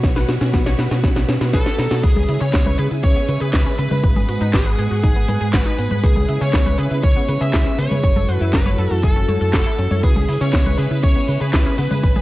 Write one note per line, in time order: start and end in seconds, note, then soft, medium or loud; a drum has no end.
0.00 0.24 B1 loud
0.00 1.99 F#4 medium
0.00 1.99 B4 medium
0.00 1.99 C#5 medium
0.00 0.14 C#5 medium
0.00 kick loud
0.00 snare medium
0.00 closed hi-hat medium
0.00 cabasa medium
0.16 0.28 B4 loud
0.16 snare medium
0.16 closed hi-hat soft
0.16 cabasa soft
0.28 0.39 B2 medium
0.28 0.35 F#4 medium
0.28 snare medium
0.28 closed hi-hat medium
0.41 0.51 B2 medium
0.41 0.51 C#4 medium
0.41 snare medium
0.41 closed hi-hat soft
0.41 cabasa medium
0.53 0.74 B1 loud
0.53 0.64 B3 loud
0.53 kick loud
0.53 snare medium
0.53 closed hi-hat medium
0.53 cabasa soft
0.66 0.76 C#5 loud
0.66 snare medium
0.66 closed hi-hat soft
0.66 cabasa soft
0.78 0.89 B2 loud
0.78 0.89 B4 medium
0.78 snare medium
0.78 closed hi-hat medium
0.91 1.01 B2 medium
0.91 0.97 F#4 medium
0.91 snare medium
0.91 closed hi-hat soft
0.91 cabasa medium
1.04 1.24 B1 medium
1.04 1.14 C#4 medium
1.04 kick loud
1.04 snare loud
1.04 closed hi-hat medium
1.04 cabasa soft
1.16 1.22 B3 medium
1.16 snare medium
1.16 closed hi-hat soft
1.16 cabasa soft
1.28 1.39 B2 medium
1.28 1.41 C#4 medium
1.28 snare loud
1.28 closed hi-hat medium
1.41 1.51 B2 loud
1.41 1.52 B4 medium
1.41 snare medium
1.41 closed hi-hat soft
1.41 cabasa medium
1.54 1.64 B1 medium
1.54 2.03 A4 medium
1.54 1.63 B4 loud
1.54 kick loud
1.54 snare loud
1.54 closed hi-hat medium
1.54 cabasa medium
1.66 1.76 B4 medium
1.66 snare medium
1.66 closed hi-hat soft
1.66 cabasa soft
1.79 1.89 B2 medium
1.79 1.84 A#5 medium
1.79 snare loud
1.79 closed hi-hat medium
1.91 2.01 B2 medium
1.91 2.01 F#4 medium
1.91 snare loud
1.91 closed hi-hat soft
1.91 cabasa medium
2.04 2.24 C#2 loud
2.04 4.02 C#4 medium
2.04 2.41 G#4 loud
2.04 8.00 G#4 medium
2.04 6.00 B4 medium
2.04 2.15 B4 medium
2.04 4.02 E5 medium
2.04 8.00 D#6 medium
2.04 kick loud
2.04 closed hi-hat medium
2.04 crash loud
2.04 cabasa soft
2.16 2.26 G#4 medium
2.16 closed hi-hat soft
2.16 high conga medium
2.16 cabasa soft
2.28 2.39 C#3 medium
2.28 2.40 E4 medium
2.28 closed hi-hat medium
2.41 2.51 C#3 medium
2.41 2.51 C#4 loud
2.41 2.78 C#5 loud
2.41 closed hi-hat soft
2.41 cabasa medium
2.54 2.74 C#2 loud
2.54 2.64 B3 medium
2.54 kick loud
2.54 snare loud
2.54 clap medium
2.54 closed hi-hat medium
2.54 cabasa soft
2.66 2.78 B4 loud
2.66 closed hi-hat soft
2.66 high conga medium
2.66 cabasa soft
2.78 2.89 C#3 loud
2.78 2.90 G#4 loud
2.78 2.85 B4 medium
2.78 closed hi-hat loud
2.91 3.01 C#3 medium
2.91 3.01 E4 medium
2.91 closed hi-hat soft
2.91 cabasa medium
3.04 3.14 C#2 medium
3.04 3.15 C#4 medium
3.04 3.41 C#5 loud
3.04 kick loud
3.04 closed hi-hat medium
3.04 cabasa soft
3.16 3.28 B3 medium
3.16 closed hi-hat soft
3.16 cabasa soft
3.28 3.39 C#3 loud
3.28 3.35 B4 medium
3.28 closed hi-hat medium
3.41 3.51 C#3 medium
3.41 3.51 G#4 loud
3.41 3.77 B4 loud
3.41 closed hi-hat soft
3.41 cabasa medium
3.54 3.64 C#2 loud
3.54 3.63 E4 medium
3.54 kick loud
3.54 snare loud
3.54 clap loud
3.54 closed hi-hat medium
3.54 cabasa soft
3.66 3.78 C#4 loud
3.66 closed hi-hat soft
3.66 cabasa soft
3.79 3.89 C#3 medium
3.79 3.89 B3 medium
3.79 4.50 B4 loud
3.79 closed hi-hat medium
3.91 4.01 C#3 loud
3.91 4.01 B4 loud
3.91 closed hi-hat soft
3.91 high conga medium
3.91 cabasa medium
4.03 4.24 G#1 loud
4.03 6.01 G#3 medium
4.03 4.15 B4 medium
4.03 6.01 F#5 medium
4.03 kick loud
4.03 closed hi-hat medium
4.03 cabasa soft
4.16 4.26 G#4 medium
4.16 closed hi-hat soft
4.16 high conga medium
4.16 cabasa soft
4.28 4.39 G#2 medium
4.28 4.40 F#4 medium
4.28 closed hi-hat medium
4.41 4.51 G#2 loud
4.41 4.51 D#4 loud
4.41 closed hi-hat soft
4.41 cabasa medium
4.53 4.74 G#1 loud
4.53 4.63 B3 medium
4.53 5.03 G#4 loud
4.53 kick loud
4.53 snare loud
4.53 clap medium
4.53 closed hi-hat medium
4.53 cabasa soft
4.66 4.78 B4 loud
4.66 closed hi-hat soft
4.66 cabasa soft
4.78 4.89 G#2 loud
4.78 4.90 G#4 loud
4.78 closed hi-hat medium
4.91 5.01 G#2 medium
4.91 5.01 F#4 medium
4.91 closed hi-hat soft
4.91 cabasa medium
5.03 5.24 G#1 medium
5.03 5.15 D#4 medium
5.03 5.55 G#4 medium
5.03 kick loud
5.03 closed hi-hat medium
5.03 cabasa soft
5.16 5.28 B3 medium
5.16 closed hi-hat soft
5.16 cabasa soft
5.28 5.39 G#2 medium
5.28 5.34 B4 medium
5.28 closed hi-hat loud
5.28 high conga medium
5.41 5.51 G#2 medium
5.41 5.51 G#4 loud
5.41 closed hi-hat soft
5.41 cabasa medium
5.53 5.64 G#1 loud
5.53 5.63 F#4 medium
5.53 6.05 B4 loud
5.53 kick loud
5.53 snare loud
5.53 clap loud
5.53 closed hi-hat medium
5.53 cabasa soft
5.66 5.78 D#4 loud
5.66 closed hi-hat soft
5.66 cabasa soft
5.78 5.89 G#2 loud
5.78 5.88 B3 medium
5.78 closed hi-hat medium
5.91 6.01 G#2 medium
5.91 6.01 B4 loud
5.91 closed hi-hat soft
5.91 high conga medium
5.91 cabasa medium
6.03 6.24 C#2 loud
6.03 8.01 C#4 medium
6.03 6.42 G#4 loud
6.03 8.01 B4 medium
6.03 6.15 B4 medium
6.03 8.01 E5 medium
6.03 kick loud
6.03 closed hi-hat medium
6.03 cabasa soft
6.16 6.26 G#4 medium
6.16 closed hi-hat soft
6.16 high conga medium
6.16 cabasa soft
6.28 6.39 C#3 medium
6.28 6.40 E4 medium
6.28 closed hi-hat medium
6.41 6.51 C#3 medium
6.41 6.51 C#4 loud
6.41 6.78 C#5 loud
6.41 closed hi-hat soft
6.41 cabasa medium
6.54 6.74 C#2 loud
6.54 6.63 B3 medium
6.54 kick loud
6.54 snare loud
6.54 clap medium
6.54 closed hi-hat medium
6.54 cabasa soft
6.66 6.78 B4 loud
6.66 closed hi-hat soft
6.66 high conga medium
6.66 cabasa soft
6.78 6.89 C#3 loud
6.78 6.90 G#4 loud
6.78 7.03 B4 loud
6.78 closed hi-hat medium
6.91 7.01 C#3 medium
6.91 7.01 E4 medium
6.91 closed hi-hat soft
6.91 cabasa medium
7.03 7.14 C#2 medium
7.03 7.15 C#4 medium
7.03 7.42 C#5 loud
7.03 kick loud
7.03 closed hi-hat medium
7.03 cabasa soft
7.16 7.28 B3 medium
7.16 closed hi-hat soft
7.16 cabasa soft
7.29 7.39 C#3 loud
7.29 7.34 B4 medium
7.29 closed hi-hat medium
7.41 7.51 C#3 medium
7.41 7.51 G#4 loud
7.41 7.80 E5 loud
7.41 closed hi-hat soft
7.41 cabasa medium
7.53 7.64 C#2 loud
7.53 7.63 E4 medium
7.53 kick loud
7.53 snare loud
7.53 clap medium
7.53 closed hi-hat medium
7.53 cabasa soft
7.66 7.78 C#4 loud
7.66 closed hi-hat soft
7.66 cabasa soft
7.78 7.89 C#3 loud
7.78 7.88 B3 medium
7.78 8.35 C#5 loud
7.78 closed hi-hat medium
7.91 8.01 C#3 loud
7.91 8.01 B4 loud
7.91 closed hi-hat soft
7.91 high conga medium
7.91 cabasa medium
8.03 8.24 F#1 loud
8.03 10.02 E4 medium
8.03 10.02 F#4 medium
8.03 10.02 A4 medium
8.03 8.15 C#5 medium
8.03 kick loud
8.03 closed hi-hat medium
8.03 cabasa medium
8.16 8.26 A4 medium
8.16 closed hi-hat soft
8.16 high conga medium
8.16 cabasa soft
8.28 8.39 F#2 medium
8.28 8.40 F#4 medium
8.28 closed hi-hat medium
8.35 8.53 B4 loud
8.41 8.51 F#2 medium
8.41 8.51 E4 loud
8.41 closed hi-hat soft
8.41 cabasa medium
8.53 8.74 F#1 loud
8.53 8.63 C#4 medium
8.53 9.05 B4 loud
8.53 kick loud
8.53 snare loud
8.53 clap medium
8.53 closed hi-hat medium
8.53 cabasa medium
8.66 8.78 C#5 loud
8.66 closed hi-hat soft
8.66 high conga medium
8.66 cabasa soft
8.78 8.89 F#2 loud
8.78 8.90 A4 loud
8.78 closed hi-hat medium
8.91 9.01 F#2 medium
8.91 9.01 F#4 medium
8.91 closed hi-hat soft
8.91 cabasa medium
9.03 9.24 F#1 medium
9.03 9.15 E4 medium
9.03 9.52 A4 loud
9.03 kick loud
9.03 closed hi-hat medium
9.03 cabasa soft
9.16 9.28 C#4 medium
9.16 closed hi-hat soft
9.16 cabasa soft
9.28 9.39 F#2 loud
9.28 9.34 C#5 medium
9.28 closed hi-hat medium
9.28 high conga medium
9.41 9.51 F#2 medium
9.41 9.51 A4 loud
9.41 closed hi-hat soft
9.41 cabasa medium
9.53 9.64 F#1 medium
9.53 9.63 F#4 medium
9.53 10.00 A4 medium
9.53 kick loud
9.53 snare loud
9.53 clap medium
9.53 closed hi-hat medium
9.53 cabasa soft
9.66 9.78 E4 loud
9.66 closed hi-hat soft
9.66 cabasa soft
9.78 9.89 F#2 medium
9.78 9.88 C#4 medium
9.78 closed hi-hat medium
9.91 10.01 F#2 medium
9.91 10.01 C#5 loud
9.91 closed hi-hat soft
9.91 high conga medium
9.91 cabasa medium
10.03 10.24 C#2 loud
10.03 12.01 C#4 medium
10.03 10.42 G#4 loud
10.03 12.22 G#4 medium
10.03 12.22 B4 medium
10.03 10.15 B4 medium
10.03 12.01 E5 medium
10.03 12.22 D#6 medium
10.03 kick loud
10.03 closed hi-hat medium
10.03 cabasa medium
10.16 10.26 G#4 medium
10.16 closed hi-hat soft
10.16 high conga medium
10.16 cabasa soft
10.28 10.39 C#3 medium
10.28 10.40 E4 medium
10.28 open hi-hat loud
10.41 10.51 C#3 loud
10.41 10.51 C#4 loud
10.41 10.76 C#5 loud
10.41 closed hi-hat soft
10.41 cabasa medium
10.53 10.74 C#2 loud
10.53 10.63 B3 medium
10.53 kick loud
10.53 snare loud
10.53 clap medium
10.53 closed hi-hat medium
10.53 cabasa medium
10.66 10.78 B4 loud
10.66 closed hi-hat soft
10.66 high conga medium
10.66 cabasa soft
10.78 10.89 C#3 loud
10.78 10.90 G#4 loud
10.78 11.03 B4 medium
10.78 open hi-hat medium
10.91 11.01 C#3 medium
10.91 11.01 E4 medium
10.91 closed hi-hat soft
10.91 cabasa medium
11.03 11.14 C#2 medium
11.03 11.15 C#4 medium
11.03 11.41 C#5 loud
11.03 kick loud
11.03 closed hi-hat medium
11.03 cabasa medium
11.16 11.28 B3 medium
11.16 closed hi-hat soft
11.16 cabasa soft
11.28 11.39 C#3 loud
11.28 11.34 B4 medium
11.28 open hi-hat loud
11.41 11.51 C#3 medium
11.41 11.51 G#4 loud
11.41 11.76 B4 medium
11.41 closed hi-hat soft
11.41 cabasa medium
11.53 11.64 C#2 loud
11.53 11.63 E4 medium
11.53 kick loud
11.53 snare loud
11.53 clap medium
11.53 closed hi-hat medium
11.53 cabasa medium
11.66 11.78 C#4 loud
11.66 closed hi-hat soft
11.66 cabasa soft
11.78 11.89 C#3 loud
11.78 11.88 B3 medium
11.78 12.22 B4 loud
11.78 open hi-hat medium
11.91 12.01 C#3 loud
11.91 12.01 B4 loud
11.91 closed hi-hat soft
11.91 high conga medium
11.91 cabasa medium
12.03 12.22 G#1 loud
12.03 12.22 G#3 medium
12.03 12.15 B4 medium
12.03 12.22 F#5 medium
12.03 kick loud
12.03 closed hi-hat medium
12.03 cabasa medium
12.16 12.22 G#4 medium
12.16 closed hi-hat soft
12.16 high conga medium
12.16 cabasa soft